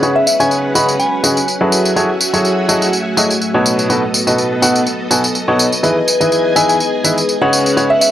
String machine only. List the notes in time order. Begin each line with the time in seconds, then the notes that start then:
Already playing: C#4 B4 F#5
1.72 F#4 E5 F#5 G#5
3.65 B3 A4 D#5
5.83 G#4 G#5
7.53 C#4 B4 F#5